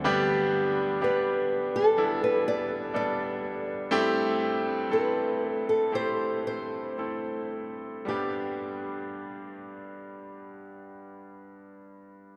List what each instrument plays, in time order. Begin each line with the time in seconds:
Already playing: nylon-string guitar D3 C4 F#4
0.04 grand piano G2 D3 G3 B3 D4 G4
1.01 grand piano G3 B3 D4 G4, nylon-string guitar B4
1.76 nylon-string guitar A4
1.97 grand piano G3 B3 D4 E4
2.24 nylon-string guitar B4
2.48 nylon-string guitar D5
2.94 grand piano G3 B3 D4 A4, nylon-string guitar D5
3.91 grand piano G2 A3 C4 E4 G4
4.90 grand piano A3 C4 E4 A4, nylon-string guitar B4
5.50 nylon-string guitar A4
5.69 nylon-string guitar A4
5.92 grand piano A3 C4 E4 G4, nylon-string guitar C5
6.47 nylon-string guitar C5
6.98 grand piano A3 C4 E4 A4
8.05 grand piano G2 G3 B3 D4, nylon-string guitar G4
8.10 grand piano G4